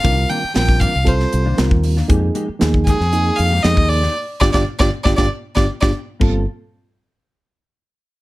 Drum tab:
CC |----------------|----------------|----------------|x---------------|
HH |x-x-x-x-x-x-x-o-|x-x-x-x-x-x-x-o-|----------------|----------------|
SD |----o----o--o--o|----o-oo----o--o|--oo-o-oo--o-o--|----------------|
BD |o----oo-o----o--|o----oo------o--|--oo-o-oo--o-o--|o---------------|